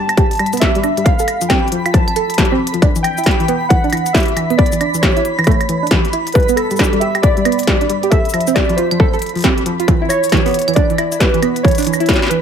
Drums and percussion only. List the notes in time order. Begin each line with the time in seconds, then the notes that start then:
0.09 closed hi-hat, claves
0.17 kick, closed hi-hat
0.31 closed hi-hat
0.33 closed hi-hat
0.35 closed hi-hat
0.37 closed hi-hat
0.39 closed hi-hat, claves
0.46 closed hi-hat
0.53 closed hi-hat, cabasa
0.57 closed hi-hat
0.61 kick, snare, closed hi-hat
0.75 closed hi-hat
0.84 closed hi-hat, claves
0.97 closed hi-hat
1.06 kick, closed hi-hat
1.19 closed hi-hat, cabasa
1.28 closed hi-hat, claves
1.41 closed hi-hat, cabasa
1.50 kick, snare, closed hi-hat, claves
1.68 closed hi-hat
1.72 closed hi-hat
1.86 closed hi-hat, claves
1.94 kick, closed hi-hat
2.08 closed hi-hat, claves
2.16 closed hi-hat
2.30 closed hi-hat
2.34 closed hi-hat
2.38 kick, snare, closed hi-hat
2.45 closed hi-hat
2.67 closed hi-hat
2.74 closed hi-hat
2.82 kick, closed hi-hat
2.96 closed hi-hat, cabasa
3.04 closed hi-hat, claves
3.18 closed hi-hat, cabasa
3.24 kick, snare, closed hi-hat
3.26 closed hi-hat, claves
3.31 closed hi-hat
3.40 closed hi-hat
3.48 closed hi-hat
3.70 kick, closed hi-hat
3.84 closed hi-hat
3.90 closed hi-hat
3.93 closed hi-hat, claves
4.06 closed hi-hat, cabasa
4.14 kick, snare, closed hi-hat
4.17 closed hi-hat
4.23 closed hi-hat
4.25 closed hi-hat
4.28 closed hi-hat
4.37 closed hi-hat, claves
4.50 closed hi-hat
4.59 kick, closed hi-hat
4.66 closed hi-hat
4.72 closed hi-hat, cabasa
4.81 closed hi-hat, claves
4.94 cabasa
5.03 kick, snare, closed hi-hat, claves
5.17 closed hi-hat
5.25 closed hi-hat
5.39 closed hi-hat, claves
5.44 kick, closed hi-hat, claves
5.47 closed hi-hat, claves
5.51 closed hi-hat, claves
5.54 claves
5.61 closed hi-hat, claves
5.69 closed hi-hat
5.87 closed hi-hat
5.91 kick, snare, closed hi-hat
6.05 closed hi-hat
6.13 closed hi-hat
6.27 closed hi-hat
6.32 kick, closed hi-hat
6.35 closed hi-hat
6.40 closed hi-hat
6.43 closed hi-hat
6.49 closed hi-hat, cabasa
6.57 closed hi-hat, claves
6.71 closed hi-hat, cabasa
6.76 kick, snare, closed hi-hat, cabasa, claves
6.84 cabasa
6.93 closed hi-hat
7.01 closed hi-hat
7.15 closed hi-hat, claves
7.23 kick, closed hi-hat
7.37 closed hi-hat
7.45 closed hi-hat, claves
7.52 closed hi-hat
7.59 closed hi-hat, cabasa
7.63 closed hi-hat
7.67 kick, snare, closed hi-hat
7.81 closed hi-hat
7.90 closed hi-hat
8.03 closed hi-hat
8.12 kick, closed hi-hat
8.25 closed hi-hat
8.29 cabasa
8.34 closed hi-hat, claves
8.41 closed hi-hat
8.47 cabasa
8.56 kick, snare, closed hi-hat, claves
8.69 closed hi-hat
8.78 closed hi-hat
8.91 closed hi-hat, claves
9.00 kick
9.13 closed hi-hat
9.19 closed hi-hat
9.22 closed hi-hat
9.26 closed hi-hat
9.29 closed hi-hat
9.35 closed hi-hat
9.37 closed hi-hat
9.39 closed hi-hat
9.41 closed hi-hat
9.42 kick, snare, closed hi-hat
9.44 closed hi-hat
9.58 closed hi-hat
9.66 closed hi-hat
9.80 closed hi-hat
9.88 kick, closed hi-hat
10.10 closed hi-hat, cabasa, claves
10.24 closed hi-hat, cabasa
10.29 kick, snare, closed hi-hat
10.32 closed hi-hat, claves
10.37 closed hi-hat
10.46 closed hi-hat
10.48 closed hi-hat
10.49 closed hi-hat
10.51 closed hi-hat
10.53 closed hi-hat
10.54 closed hi-hat
10.59 closed hi-hat
10.62 closed hi-hat
10.68 closed hi-hat, claves
10.74 kick, closed hi-hat
10.76 closed hi-hat
10.90 closed hi-hat
10.98 closed hi-hat, claves
11.12 closed hi-hat, cabasa
11.20 kick, snare, closed hi-hat
11.34 closed hi-hat
11.43 closed hi-hat, claves
11.56 closed hi-hat
11.65 kick, closed hi-hat
11.68 closed hi-hat
11.71 closed hi-hat
11.75 closed hi-hat
11.78 closed hi-hat, cabasa
11.80 closed hi-hat
11.82 closed hi-hat
11.85 closed hi-hat
11.87 closed hi-hat
11.93 cabasa, claves
12.00 closed hi-hat
12.06 kick, snare, closed hi-hat
12.09 closed hi-hat
12.13 snare, closed hi-hat
12.22 snare
12.27 snare
12.31 closed hi-hat